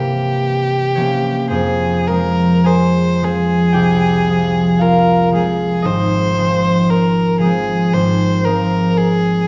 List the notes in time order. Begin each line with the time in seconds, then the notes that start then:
Already playing: G2 C3 E3 A#3 C4 E4 G4 E5
0.96 E3 A#3 C4 C#4 C#5
1.48 F2 C4 G#4 C5
2.07 F3 G#3 C4 A#4
2.64 G#4 C5 G#5
3.22 F3 G#3 C4 G#4
3.73 C2 G4 G5
4.29 F3 G#3 C4
4.79 F4 A#4 F5
5.31 F3 G#3 C4 G#4
5.82 G#1 D#4 C5 D#5
6.38 F3 G#3 C4
6.90 A#4
7.39 F3 G#3 G#4
7.44 C4
7.94 G#1 C5
8.45 F3 G#3 C4 A#4
8.97 G#4